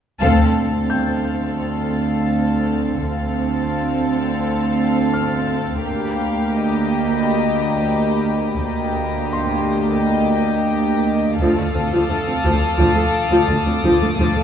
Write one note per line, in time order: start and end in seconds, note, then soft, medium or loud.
0.20 3.00 D2 medium
0.20 3.00 C4 medium
0.20 3.00 A4 medium
0.20 3.00 F5 medium
0.90 2.99 G5 soft
0.90 2.99 G6 soft
3.04 5.80 D2 soft
3.04 5.80 C4 soft
3.04 5.80 A4 soft
3.04 6.50 F5 soft
5.14 7.19 F6 soft
5.83 8.59 D2 soft
5.83 8.63 A#3 soft
5.83 8.59 G4 medium
5.83 11.02 A#5 soft
5.83 10.33 B5 soft
6.53 8.61 D#5 soft
8.63 11.36 D2 medium
8.63 11.37 A#3 soft
8.63 11.36 G4 soft
8.63 11.36 D#5 soft
9.33 11.36 C6 soft
11.40 11.47 D2 medium
11.40 11.57 F3 medium
11.40 14.15 A4 medium
11.40 14.14 F5 medium
11.40 14.43 D6 soft
11.40 14.43 D#6 soft
11.57 11.65 D2 soft
11.57 11.64 A3 soft
11.74 11.82 D2 soft
11.74 11.81 C4 soft
11.92 11.99 D2 medium
11.92 12.09 F3 medium
12.09 12.17 D2 soft
12.09 12.16 A3 soft
12.27 12.34 D2 soft
12.27 12.34 C4 soft
12.44 12.51 D2 medium
12.44 12.52 D2 medium
12.44 12.61 F3 medium
12.79 12.86 D2 medium
12.79 12.95 F3 medium
12.79 14.43 A6 soft
12.96 13.03 D2 soft
12.96 13.03 A3 soft
13.31 13.38 D2 medium
13.31 13.48 F3 medium
13.49 13.56 D2 soft
13.49 13.56 A3 soft
13.66 13.73 D2 soft
13.66 13.73 C4 medium
13.83 13.90 D2 medium
13.83 13.91 D2 medium
13.83 14.00 F3 medium
14.01 14.08 D2 soft
14.01 14.08 A3 medium
14.18 14.25 D2 medium
14.18 14.34 F3 medium
14.18 14.43 A4 medium
14.18 14.43 F5 medium
14.35 14.42 D2 soft
14.35 14.43 A3 soft